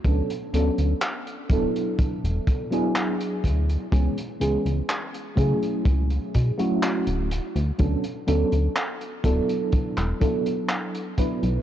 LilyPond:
<<
  \new Staff \with { instrumentName = "FM electric piano" } { \time 4/4 \key b \dorian \tempo 4 = 62 <fis b cis' d' a'>16 r16 <fis b cis' d' a'>8 r8 <fis b d' e' a'>4~ <fis b d' e' a'>16 <fis b d' e' gis'>4~ <fis b d' e' gis'>16 | <e gis b cis' gis'>16 r16 <e gis b cis' gis'>8 r8 <fis a cis' e' gis'>4~ <fis a cis' e' gis'>16 <fis a cis' e' fis'>8. r8 | <fis b cis' d' a'>16 r16 <fis b cis' d' a'>8 r8 <fis b d' e' a'>4 <fis b d' e' a'>4 <fis b d' e' b'>8 | }
  \new Staff \with { instrumentName = "Analog synth bass" } { \clef bass \time 4/4 \key b \dorian d,16 r16 d,16 d,16 r8 d,,16 r8 e,,16 r4 d,16 r16 | cis,16 r16 cis,16 cis,16 r8 cis16 r16 cis,16 r16 b,16 r8 d,,16 r16 d,16 | d,16 r16 d,16 d,16 r8 d,,16 r8 e,,16 r4 r16 b,,16 | }
  \new DrumStaff \with { instrumentName = "Drums" } \drummode { \time 4/4 <hh bd>16 hh16 hh16 hh16 <hc hh>16 hh16 <hh bd>16 hh16 <hh bd>16 hh16 <hh bd>16 hh16 <hc hh>16 hh16 <hh bd>16 hh16 | <hh bd>16 hh16 hh16 hh16 <hc hh>16 hh16 <hh bd>16 hh16 <hh bd>16 hh16 <hh bd>16 hh16 <hc hh>16 hh16 hh16 hh16 | <hh bd>16 hh16 hh16 hh16 <hc hh>16 hh16 <hh bd>16 hh16 <hh bd>16 <hc hh>16 <hh bd>16 hh16 <hc hh>16 hh16 <hh bd>16 hh16 | }
>>